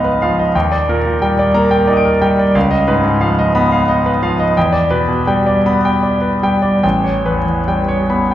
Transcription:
Already playing: C#2 G#2 F3 B3 D#4 B4 D#5 F5 B5
0.04 B4
0.22 F3 F5
0.39 D#5
0.55 D#2 G5
0.72 D5
0.89 A#2 A#4
1.06 A#2
1.22 G3 G5
1.39 D5
1.54 A#3 A#5
1.71 G5
1.87 D#4 D5 G5 A#5
1.93 D#6 D7
2.05 A#4
2.21 G3 G5
2.39 D5
2.55 C#2 F5
2.71 D#5
2.88 G#2 B4
3.04 G#2
3.20 F3 F5
3.39 D#5
3.55 B3 B5
3.72 F5
3.88 D#4 D#5
4.06 B4
4.22 F3 F5
4.40 D#5
4.57 E2 G5
4.73 D5
4.90 B2 B4
5.08 B2
5.27 G3 G5
5.46 D5
5.66 B3 B5
5.85 G5
6.03 D5
6.21 B4
6.43 G3 G5
6.62 D5
6.83 A1 G5
7.04 C#5
7.26 E2 B4
7.45 E2
7.68 G3 G5
7.88 C#5
8.10 B3 B5
8.31 G5

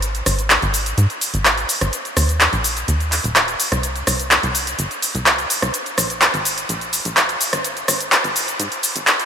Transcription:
Already playing: G#1
0.02 closed hi-hat, cabasa
0.15 closed hi-hat, cabasa
0.26 G#1, cross-stick, open hi-hat, cabasa
0.39 closed hi-hat, cabasa
0.50 clap, closed hi-hat, cabasa
0.62 G#1, closed hi-hat, cabasa
0.74 open hi-hat, cabasa
0.86 closed hi-hat, cabasa
0.98 G#2, closed hi-hat, cabasa
1.10 closed hi-hat, cabasa
1.21 open hi-hat, cabasa
1.34 G#1, closed hi-hat, cabasa
1.45 clap, closed hi-hat, cabasa
1.58 closed hi-hat, cabasa
1.69 open hi-hat, cabasa
1.81 G#1, cross-stick, closed hi-hat, cabasa
1.93 closed hi-hat, cabasa
2.05 closed hi-hat, cabasa
2.17 D#2, cross-stick, open hi-hat, cabasa
2.29 closed hi-hat, cabasa
2.40 clap, closed hi-hat, cabasa
2.53 A#1, closed hi-hat, cabasa
2.64 open hi-hat, cabasa
2.77 closed hi-hat, cabasa
2.88 D#2, closed hi-hat, cabasa
3.00 closed hi-hat, cabasa
3.12 clap, open hi-hat, cabasa
3.24 D#1, closed hi-hat, cabasa
3.36 clap, closed hi-hat, cabasa
3.48 closed hi-hat, cabasa
3.60 open hi-hat, cabasa
3.72 C2, cross-stick, closed hi-hat, cabasa
3.83 closed hi-hat, cabasa
3.96 closed hi-hat, cabasa
4.07 C2, cross-stick, open hi-hat, cabasa
4.19 closed hi-hat, cabasa
4.31 clap, closed hi-hat, cabasa
4.43 C2, closed hi-hat, cabasa
4.55 open hi-hat, cabasa
4.67 closed hi-hat, cabasa
4.79 G1, closed hi-hat, cabasa
4.91 closed hi-hat, cabasa
5.02 open hi-hat, cabasa
5.15 C2, closed hi-hat, cabasa
5.26 clap, closed hi-hat, cabasa
5.39 closed hi-hat, cabasa
5.50 open hi-hat, cabasa
5.62 C2, cross-stick, closed hi-hat, cabasa
5.74 closed hi-hat, cabasa
5.86 closed hi-hat, cabasa
5.98 A#1, cross-stick, open hi-hat, cabasa
6.10 closed hi-hat, cabasa
6.22 clap, closed hi-hat, cabasa
6.34 G#1, closed hi-hat, cabasa
6.45 open hi-hat, cabasa
6.58 closed hi-hat, cabasa
6.69 A#1, closed hi-hat, cabasa
6.81 closed hi-hat, cabasa
6.93 open hi-hat, cabasa
7.05 A#1, closed hi-hat, cabasa
7.17 clap, closed hi-hat, cabasa
7.29 closed hi-hat, cabasa
7.41 open hi-hat, cabasa
7.53 G#1, cross-stick, closed hi-hat, cabasa
7.64 closed hi-hat, cabasa
7.77 closed hi-hat, cabasa
7.88 G#1, cross-stick, open hi-hat, cabasa
8.00 closed hi-hat, cabasa
8.12 clap, closed hi-hat, cabasa
8.24 G#1, closed hi-hat, cabasa
8.36 open hi-hat, cabasa
8.48 closed hi-hat, cabasa
8.59 G#2, closed hi-hat, cabasa
8.72 closed hi-hat, cabasa
8.83 open hi-hat, cabasa
8.96 G#1, closed hi-hat, cabasa
9.07 clap, closed hi-hat, cabasa
9.19 closed hi-hat, cabasa

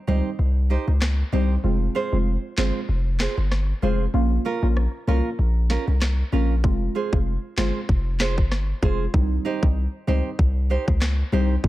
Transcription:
0.07 C#2 G3 C4 D#4 G4 C5
0.39 C2
0.70 D#4 G4 C5
0.87 C#2, muted nylon-string guitar stroke
1.02 cross-stick, snare, clap
1.32 C2 G3 C4 D#4 G4 C5
1.64 F1 G#3 C4 F4
1.95 F4 G#4 C5
2.12 F1 G#3 C4 F4
2.57 G1 G#3 C4 F4 G#4 C5, snare, clap
2.89 F1
3.20 F4 G#4 C5, snare, clap
3.37 G1, muted nylon-string guitar stroke
3.52 cross-stick, snare
3.82 F1 G#3 C4 F4 G#4 C5
4.14 A#1 A#3 C#4 F4
4.45 C#4 F4 A#4
4.62 A#1 A#3 C#4 F4
4.77 cross-stick
5.07 C2 A#3 C#4 F4 A#4
5.39 A#1
5.70 C#4 F4 A#4, snare
5.87 C2, muted nylon-string guitar stroke
6.02 cross-stick, snare, clap
6.32 A#1 A#3 C#4 F4 A#4
6.64 F1 G#3 C4 F4, kick
6.95 F4 G#4 C5
7.12 F1 G#3 C4 F4, kick
7.57 G1 G#3 C4 F4 G#4 C5, snare, clap
7.89 F1, kick
8.20 F4 G#4 C5, snare, clap
8.38 G1, muted nylon-string guitar stroke, kick
8.52 cross-stick, snare
8.82 F1 G#3 C4 F4 G#4 C5, kick
9.13 C2 G3 C4 D#4, kick
9.45 D#4 G4 C5
9.62 C2 G3 C4 D#4, kick
10.07 C#2 G3 C4 D#4 G4 C5
10.39 C2, kick
10.70 D#4 G4 C5
10.87 C#2, muted nylon-string guitar stroke, kick
11.02 cross-stick, snare, clap
11.32 C2 G3 C4 D#4 G4 C5
11.64 F1 G#3 C4 F4, kick

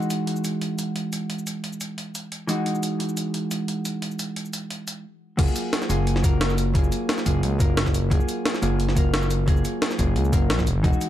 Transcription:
Already playing: E3 G#3 D#4 F#4
0.02 cabasa
0.10 closed hi-hat, cabasa
0.27 closed hi-hat
0.36 cabasa
0.44 closed hi-hat, cabasa
0.61 closed hi-hat
0.79 closed hi-hat, cabasa
0.96 closed hi-hat
1.13 closed hi-hat, cabasa
1.30 closed hi-hat
1.39 cabasa
1.47 closed hi-hat, cabasa
1.64 closed hi-hat
1.73 cabasa
1.81 closed hi-hat, cabasa
1.98 closed hi-hat
2.15 closed hi-hat, cabasa
2.32 closed hi-hat
2.47 E3 G#3 D#4 F#4, closed hi-hat, cabasa
2.66 closed hi-hat
2.75 cabasa
2.83 closed hi-hat, cabasa
3.00 closed hi-hat
3.09 cabasa
3.17 closed hi-hat, cabasa
3.34 closed hi-hat
3.51 closed hi-hat, cabasa
3.68 closed hi-hat
3.85 closed hi-hat, cabasa
4.02 closed hi-hat
4.11 cabasa
4.19 closed hi-hat, cabasa
4.36 closed hi-hat
4.45 cabasa
4.53 closed hi-hat, cabasa
4.70 closed hi-hat
4.88 closed hi-hat, cabasa
5.37 F#1 F#3 A#3 F4 G#4, kick, closed hi-hat, crash
5.48 cabasa
5.56 closed hi-hat, cabasa
5.73 snare, closed hi-hat
5.82 snare, cabasa
5.89 F#1 F#3 A#3 F4 G#4, closed hi-hat, cabasa
6.07 closed hi-hat
6.16 snare
6.22 F#1 F#3 A#3 F4 A#4, kick, closed hi-hat, cabasa
6.41 snare, closed hi-hat
6.50 cabasa
6.58 closed hi-hat, cabasa
6.74 F#3 A#3 F4 G#4, kick, closed hi-hat
6.84 cabasa
6.92 closed hi-hat, cabasa
7.09 snare, closed hi-hat
7.18 snare, cabasa
7.25 F#1 F#3 A#3 F4 G#4, kick, closed hi-hat, cabasa
7.43 C#2, closed hi-hat
7.59 F#1 F#3 A#3 F4 A#4, kick, closed hi-hat, cabasa
7.77 snare, closed hi-hat
7.86 kick, snare, cabasa
7.94 closed hi-hat, cabasa
8.10 F#1 F#3 A#3 F4 G#4, kick, closed hi-hat
8.20 cabasa
8.29 closed hi-hat, cabasa
8.46 snare, closed hi-hat
8.55 snare, cabasa
8.62 F#1 F#3 A#3 F4 G#4, closed hi-hat, cabasa
8.80 closed hi-hat
8.89 snare
8.95 F#1 F#3 A#3 F4 A#4, kick, closed hi-hat, cabasa
9.14 snare, closed hi-hat
9.22 cabasa
9.31 closed hi-hat, cabasa
9.46 F#3 A#3 F4 G#4, kick, closed hi-hat
9.57 cabasa
9.65 closed hi-hat, cabasa
9.82 snare, closed hi-hat
9.91 snare, cabasa
9.98 F#1 F#3 A#3 F4 G#4, kick, closed hi-hat, cabasa
10.16 C#2, closed hi-hat
10.25 cabasa
10.32 F#1 F#3 A#3 F4 A#4, kick, closed hi-hat, cabasa
10.50 A#1, snare, closed hi-hat
10.59 kick, snare, cabasa
10.67 E1, closed hi-hat, cabasa
10.76 G#1
10.83 E1 E3 G#3 D#4 F#4, kick, closed hi-hat
10.93 cabasa
11.01 closed hi-hat, cabasa

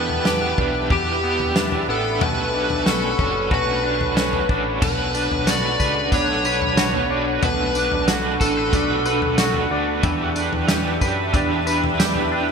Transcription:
Already playing: E2 E3 B3 D4 G4 B4 E5 B5
0.09 floor tom
0.24 E3 B3 D4 G4, snare
0.57 B1 B3 D4 G4, kick, floor tom
0.89 E2 E3 B3 D4 G4, kick, floor tom
0.93 G4
1.22 B3 D4 G4
1.40 floor tom
1.55 E3 B3 D4 G4, snare
1.72 floor tom
1.87 A1 D4 G4 A4
1.91 B3
2.20 B1 B2 A3 C#4 D4 F#4 A4 B4 C#5, floor tom
2.52 C#4 D4 F#4
2.70 floor tom
2.85 B2 A3 C#4 D4 F#4 A4, snare
3.18 F#1 C#4 D4 F#4, kick, floor tom
3.50 B1 A3 C#4 D4 F#4 B4, kick, floor tom
3.83 C#4 D4 F#4
4.01 floor tom
4.15 B2 A3 C#4 D4 F#4, snare
4.33 floor tom
4.48 A1 C#4 D4 F#4, kick
4.81 B1 B2 A3 D4 F#4 A4 B4 F#5 B5, kick, floor tom, crash, tambourine
5.13 D4 F#4 B4, tambourine
5.31 B1, floor tom
5.46 B2 A3 D4 F#4 B4 D5, snare, tambourine
5.79 C#2 D4 F#4 B4, kick, tambourine
6.11 B1 A3 D4 F#4 B4 C#5, kick, floor tom, tambourine
6.44 D4 F#4 B4, tambourine
6.62 floor tom
6.77 B2 A3 D4 F#4 B4, snare, tambourine
6.93 floor tom
7.09 D4 F#4 B4
7.42 B1 B2 A3 D4 F#4 B4 C#6, floor tom, tambourine
7.74 F#4 B4, tambourine
7.78 D4
7.91 B1, floor tom
8.07 B2 A3 D4 F#4 B4, snare, tambourine
8.40 A1 D4 F#4 A4 B4, kick, tambourine
8.57 B4
8.72 B1 A3 D4 F#4 B4, kick, floor tom, tambourine
9.05 D4 F#4 B4, tambourine
9.22 floor tom
9.38 B2 A3 D4 F#4 B4, snare, tambourine
9.54 floor tom
9.70 D2 D4 F#4 B4
10.02 E2 E3 D4 G4 B4 E5 B5, kick, floor tom, tambourine
10.35 G4 B4, tambourine
10.39 D4
10.52 E2, floor tom
10.67 E3 D4 G4 B4, snare, tambourine
11.00 F#2 D4 G4 B4, kick, tambourine
11.33 E2 E3 D4 G4 B4, kick, floor tom, tambourine
11.66 D4 G4 B4, tambourine
11.84 floor tom
11.98 E3 D4 G4 B4, snare, tambourine
12.15 floor tom
12.30 D4 G4 B4

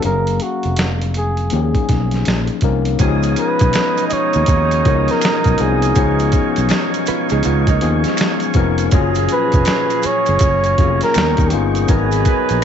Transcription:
0.02 F#1 F#3 A#3 C#4 G#4 A#4 F5, closed hi-hat
0.27 closed hi-hat
0.40 F#4, closed hi-hat
0.63 F1, closed hi-hat
0.76 snare, closed hi-hat
1.01 closed hi-hat
1.14 G#4, closed hi-hat
1.37 closed hi-hat
1.50 D#2 F3 A#3 C#4 D#4 G#4, closed hi-hat
1.55 G#4
1.75 muted fretless electric bass stroke, kick, closed hi-hat
1.89 B1, kick, snare, closed hi-hat
2.11 snare, closed hi-hat
2.25 A#1, snare, closed hi-hat
2.47 closed hi-hat
2.61 C2 F3 A#3 C#4 D#4 A#4, kick, closed hi-hat
2.85 closed hi-hat
2.99 C#2 B2 F3 G#3 B3 C#4 D#4 G4 C#5 F5 G#5 D#6, kick, closed hi-hat, maracas
3.08 G#4
3.23 closed hi-hat, maracas
3.36 B4, closed hi-hat, maracas
3.59 B1, kick, closed hi-hat, maracas
3.73 finger snap, snare, closed hi-hat, maracas
3.97 closed hi-hat, maracas
4.08 D#5, closed hi-hat, maracas
4.12 C#5, muted fretless electric bass stroke
4.33 D#2, closed hi-hat, maracas
4.46 D#2, kick, closed hi-hat, maracas
4.71 closed hi-hat, maracas
4.85 C#2 F3 B3 C#4 D#4 A#4, kick, closed hi-hat
5.08 A#4, snare, closed hi-hat, maracas
5.21 finger snap, snare, closed hi-hat, maracas
5.44 B1, kick, closed hi-hat, maracas
5.58 C2 F3 B3 C#4 D#4 G#4, closed hi-hat, maracas
5.82 closed hi-hat, maracas
5.95 C#2 F3 B3 C#4 D#4 G#4 C#6, kick, closed hi-hat, maracas
6.19 closed hi-hat, maracas
6.32 kick, closed hi-hat, maracas
6.56 B1, closed hi-hat, maracas
6.69 finger snap, snare, closed hi-hat, maracas
6.94 closed hi-hat, maracas
7.06 F4 B4, muted fretless electric bass stroke, closed hi-hat, maracas
7.29 C#2 D#4 G#4, closed hi-hat, maracas
7.43 C#2 B3 F4, closed hi-hat, maracas
7.67 A#3 D#4, kick, closed hi-hat, maracas
7.81 D#2 F3 B3 C#4 D#4 G#4, closed hi-hat
8.04 G#3 C#4, snare, closed hi-hat, maracas
8.17 finger snap, snare, closed hi-hat, maracas
8.40 closed hi-hat, maracas
8.53 F1 F3 B3 C#4 D#4 A#4, kick, closed hi-hat, maracas
8.78 closed hi-hat, maracas
8.91 F#1 A#2 F3 F#3 C#4 F4 G#4 G#5 A#5, kick, closed hi-hat, maracas
9.15 closed hi-hat, maracas
9.29 B4, closed hi-hat, maracas
9.52 F1, kick, closed hi-hat, maracas
9.65 finger snap, snare, closed hi-hat, maracas
9.90 closed hi-hat, maracas
10.02 C#5, muted fretless electric bass stroke, closed hi-hat, maracas
10.26 F#1, closed hi-hat, maracas
10.39 F#1, kick, closed hi-hat, maracas
10.64 closed hi-hat, maracas
10.78 F1 F#3 A#3 C#4 F4 G#4, kick, closed hi-hat
11.01 A#4, snare, closed hi-hat, maracas
11.14 D#2 G3 B3 C#4 D#4 A#4 C#5 D#5 G5 C#6, finger snap, snare, closed hi-hat, maracas
11.37 D#2, kick, closed hi-hat, maracas
11.48 A#3 B3 G4, closed hi-hat, maracas
11.52 G1 C#4 D#4 F4 G#4
11.75 closed hi-hat, maracas
11.88 G#1 F#3 B3 D#4 G#4 A#4 B4 G#5 A#5, kick, closed hi-hat, maracas
12.11 closed hi-hat, maracas
12.25 kick, closed hi-hat, maracas
12.49 A#1, closed hi-hat, maracas

